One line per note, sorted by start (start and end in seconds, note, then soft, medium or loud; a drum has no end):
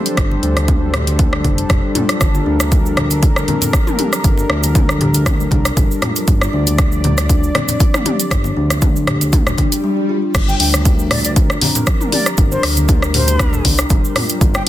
0.00 9.80 G3 medium
0.00 9.80 D4 medium
0.00 9.80 A4 medium
0.00 2.20 C5 medium
0.06 closed hi-hat soft
0.17 0.38 G1 medium
0.17 0.30 D4 medium
0.17 kick loud
0.17 cross-stick loud
0.17 closed hi-hat medium
0.17 high conga medium
0.31 muted conga soft
0.31 high conga medium
0.43 1.46 D2 medium
0.43 0.55 D4 medium
0.43 closed hi-hat soft
0.56 cross-stick medium
0.56 closed hi-hat soft
0.56 high conga medium
0.68 0.81 D4 loud
0.68 kick loud
0.68 closed hi-hat medium
0.68 mid tom medium
0.68 muted conga soft
0.94 1.01 G4 medium
0.94 cross-stick loud
0.94 closed hi-hat soft
0.94 high conga medium
0.94 low conga medium
1.07 closed hi-hat soft
1.07 muted conga medium
1.19 1.27 D4 loud
1.19 kick loud
1.19 closed hi-hat medium
1.19 mid tom medium
1.33 cross-stick medium
1.44 1.65 F1 medium
1.44 1.57 D4 loud
1.44 kick medium
1.44 closed hi-hat soft
1.44 high conga loud
1.58 closed hi-hat soft
1.58 muted conga soft
1.69 1.81 F1 medium
1.69 1.82 G3 loud
1.69 kick loud
1.69 cross-stick medium
1.69 closed hi-hat medium
1.69 low conga medium
1.95 2.09 F4 medium
1.95 closed hi-hat medium
1.95 mid tom medium
1.95 muted conga soft
1.95 low conga medium
2.09 cross-stick medium
2.09 closed hi-hat soft
2.20 2.41 G1 loud
2.20 2.28 G3 medium
2.20 6.26 A#4 loud
2.20 kick loud
2.20 cross-stick medium
2.20 closed hi-hat medium
2.20 high conga medium
2.20 cabasa medium
2.35 muted conga soft
2.35 high conga medium
2.35 cabasa soft
2.46 3.44 D2 medium
2.46 2.59 D4 medium
2.60 cross-stick medium
2.60 closed hi-hat soft
2.60 high conga medium
2.60 cabasa medium
2.72 2.79 F3 loud
2.72 kick loud
2.72 closed hi-hat soft
2.72 muted conga soft
2.72 cabasa medium
2.86 cabasa soft
2.97 3.10 D3 loud
2.97 cross-stick medium
2.97 closed hi-hat soft
2.97 high conga medium
2.97 low conga medium
3.10 closed hi-hat soft
3.10 muted conga medium
3.10 cabasa medium
3.23 3.35 D4 medium
3.23 kick loud
3.23 closed hi-hat medium
3.23 cabasa medium
3.36 cross-stick medium
3.36 cabasa soft
3.48 3.61 C4 loud
3.48 closed hi-hat soft
3.48 high conga loud
3.48 low conga medium
3.61 closed hi-hat soft
3.61 muted conga soft
3.61 high conga medium
3.61 low conga medium
3.61 cabasa medium
3.73 3.86 F3 loud
3.73 kick loud
3.73 cross-stick medium
3.73 closed hi-hat soft
3.73 cabasa medium
3.87 mid tom medium
3.87 cabasa soft
3.99 4.06 G4 medium
3.99 closed hi-hat soft
3.99 mid tom medium
3.99 muted conga soft
4.13 cross-stick medium
4.13 closed hi-hat soft
4.13 cabasa medium
4.24 4.44 G1 loud
4.24 4.37 D4 medium
4.24 kick loud
4.24 closed hi-hat medium
4.24 high conga medium
4.24 cabasa medium
4.38 muted conga medium
4.38 high conga medium
4.38 cabasa soft
4.50 5.47 D2 medium
4.50 4.62 D4 loud
4.50 cross-stick medium
4.63 closed hi-hat soft
4.63 high conga medium
4.63 cabasa medium
4.75 4.88 D4 loud
4.75 kick loud
4.75 closed hi-hat medium
4.75 mid tom medium
4.75 muted conga soft
4.75 cabasa medium
4.89 cross-stick medium
4.89 cabasa soft
5.01 5.08 G4 medium
5.01 closed hi-hat soft
5.01 high conga medium
5.01 low conga loud
5.14 closed hi-hat soft
5.14 muted conga medium
5.14 cabasa medium
5.26 kick loud
5.26 cross-stick medium
5.26 closed hi-hat medium
5.26 mid tom medium
5.26 cabasa medium
5.40 cabasa soft
5.51 5.72 C2 medium
5.51 5.64 D4 loud
5.51 kick medium
5.51 closed hi-hat soft
5.51 high conga loud
5.65 cross-stick medium
5.65 closed hi-hat soft
5.65 muted conga soft
5.65 cabasa medium
5.77 5.88 G1 loud
5.77 5.89 G3 loud
5.77 kick loud
5.77 closed hi-hat medium
5.77 low conga medium
5.77 cabasa medium
5.91 cabasa soft
6.02 6.15 F4 medium
6.02 cross-stick medium
6.02 closed hi-hat medium
6.02 mid tom medium
6.02 muted conga soft
6.02 low conga medium
6.16 closed hi-hat soft
6.16 cabasa medium
6.28 6.48 G1 loud
6.28 6.35 G3 medium
6.28 9.83 D5 medium
6.28 kick loud
6.28 closed hi-hat medium
6.28 high conga medium
6.28 cabasa medium
6.41 cross-stick medium
6.41 muted conga medium
6.41 high conga medium
6.41 cabasa soft
6.53 7.51 D2 medium
6.53 6.66 D4 loud
6.67 closed hi-hat soft
6.67 high conga medium
6.67 cabasa medium
6.78 kick loud
6.78 cross-stick medium
6.78 closed hi-hat medium
6.78 muted conga soft
6.78 cabasa medium
6.92 cabasa soft
7.04 7.17 D3 loud
7.04 closed hi-hat soft
7.04 high conga medium
7.04 low conga medium
7.18 cross-stick medium
7.18 closed hi-hat soft
7.18 muted conga medium
7.18 cabasa medium
7.29 7.42 D4 medium
7.29 kick loud
7.29 closed hi-hat medium
7.29 cabasa medium
7.43 cabasa soft
7.55 7.67 C4 loud
7.55 cross-stick medium
7.55 closed hi-hat soft
7.55 high conga medium
7.55 low conga medium
7.68 closed hi-hat soft
7.68 muted conga soft
7.68 high conga medium
7.68 low conga medium
7.68 cabasa medium
7.80 7.93 F3 loud
7.80 kick loud
7.80 closed hi-hat medium
7.80 cabasa medium
7.94 cross-stick medium
7.94 mid tom medium
7.94 cabasa soft
8.05 8.13 G4 medium
8.05 closed hi-hat medium
8.05 mid tom medium
8.05 muted conga medium
8.20 closed hi-hat soft
8.20 cabasa medium
8.30 8.51 G1 loud
8.30 8.44 D4 medium
8.30 kick loud
8.30 cross-stick medium
8.30 closed hi-hat medium
8.30 high conga medium
8.30 cabasa medium
8.44 muted conga medium
8.44 high conga medium
8.44 cabasa soft
8.57 9.54 D2 medium
8.57 8.69 D4 loud
8.70 cross-stick medium
8.70 closed hi-hat soft
8.70 high conga medium
8.70 cabasa medium
8.82 8.94 D4 loud
8.82 kick loud
8.82 closed hi-hat medium
8.82 mid tom medium
8.82 muted conga soft
8.82 cabasa medium
8.96 cabasa soft
9.07 9.15 G4 medium
9.07 cross-stick medium
9.07 closed hi-hat soft
9.07 high conga medium
9.07 low conga medium
9.21 closed hi-hat soft
9.21 muted conga medium
9.21 cabasa medium
9.33 9.40 D4 loud
9.33 kick loud
9.33 closed hi-hat medium
9.33 mid tom medium
9.33 swell medium
9.33 cabasa medium
9.47 cross-stick medium
9.47 low conga medium
9.47 cabasa soft
9.58 9.71 D4 loud
9.58 kick medium
9.58 closed hi-hat soft
9.58 high conga loud
9.72 closed hi-hat soft
9.72 muted conga soft
9.72 cabasa medium
9.84 9.96 G3 loud
10.09 10.22 F4 medium
10.35 10.55 G1 loud
10.35 14.69 G3 medium
10.35 14.69 D4 medium
10.35 14.69 G4 medium
10.35 14.40 A#4 loud
10.35 kick loud
10.35 cross-stick loud
10.35 closed hi-hat medium
10.35 crash loud
10.35 high conga medium
10.35 cabasa medium
10.48 10.56 G5 medium
10.48 muted conga medium
10.48 high conga medium
10.48 cabasa soft
10.60 11.57 D2 medium
10.60 10.72 D4 loud
10.60 10.69 G5 medium
10.60 open hi-hat medium
10.74 cross-stick medium
10.74 closed hi-hat soft
10.74 high conga medium
10.74 cabasa medium
10.85 10.93 F3 loud
10.85 kick loud
10.85 closed hi-hat medium
10.85 muted conga soft
10.85 cabasa medium
10.99 cabasa soft
11.11 11.24 D3 loud
11.11 11.20 D5 medium
11.11 cross-stick medium
11.11 open hi-hat medium
11.11 high conga medium
11.11 low conga loud
11.24 11.32 D5 medium
11.24 closed hi-hat soft
11.24 muted conga medium
11.24 cabasa medium
11.36 11.49 D4 medium
11.36 kick loud
11.36 closed hi-hat medium
11.36 cabasa medium
11.50 cross-stick medium
11.50 cabasa soft
11.61 11.74 C4 loud
11.61 open hi-hat loud
11.61 high conga loud
11.61 low conga medium
11.75 closed hi-hat soft
11.75 muted conga soft
11.75 high conga medium
11.75 low conga medium
11.75 cabasa medium
11.87 11.99 F3 loud
11.87 kick loud
11.87 cross-stick loud
11.87 closed hi-hat medium
11.87 cabasa medium
12.01 mid tom medium
12.01 cabasa soft
12.12 12.20 G4 medium
12.12 12.28 D5 medium
12.12 open hi-hat medium
12.12 mid tom medium
12.12 muted conga soft
12.26 cross-stick medium
12.26 closed hi-hat soft
12.26 cabasa medium
12.37 12.58 G1 loud
12.37 12.50 D4 medium
12.37 kick loud
12.37 closed hi-hat medium
12.37 high conga medium
12.37 cabasa medium
12.51 12.66 C5 medium
12.51 muted conga medium
12.51 cabasa soft
12.63 13.61 D2 medium
12.63 12.76 D4 loud
12.63 cross-stick loud
12.63 open hi-hat loud
12.77 closed hi-hat soft
12.77 high conga medium
12.77 cabasa medium
12.88 13.01 D4 loud
12.88 kick loud
12.88 closed hi-hat medium
12.88 mid tom medium
12.88 muted conga soft
12.88 cabasa medium
13.02 cross-stick medium
13.02 cabasa soft
13.14 13.22 G4 medium
13.14 13.65 C5 loud
13.14 open hi-hat loud
13.14 high conga medium
13.14 low conga loud
13.28 closed hi-hat soft
13.28 muted conga medium
13.28 cabasa medium
13.39 13.47 D4 loud
13.39 kick loud
13.39 cross-stick loud
13.39 closed hi-hat medium
13.39 mid tom medium
13.39 cabasa medium
13.53 low conga medium
13.53 cabasa soft
13.65 13.85 C2 loud
13.65 13.77 D4 loud
13.65 kick medium
13.65 open hi-hat loud
13.65 high conga loud
13.78 cross-stick medium
13.78 closed hi-hat soft
13.78 muted conga soft
13.78 cabasa medium
13.90 14.01 G1 loud
13.90 14.03 G3 loud
13.90 kick loud
13.90 closed hi-hat medium
13.90 low conga medium
13.90 cabasa medium
14.05 cabasa soft
14.16 14.29 F4 medium
14.16 cross-stick medium
14.16 open hi-hat medium
14.16 mid tom medium
14.16 muted conga soft
14.16 low conga medium
14.29 closed hi-hat soft
14.29 cabasa medium
14.41 14.61 G1 loud
14.41 14.49 G3 medium
14.41 14.69 C5 loud
14.41 kick loud
14.41 closed hi-hat medium
14.41 high conga medium
14.41 cabasa medium
14.54 14.62 G5 medium
14.54 cross-stick medium
14.54 muted conga soft
14.54 high conga medium
14.54 cabasa soft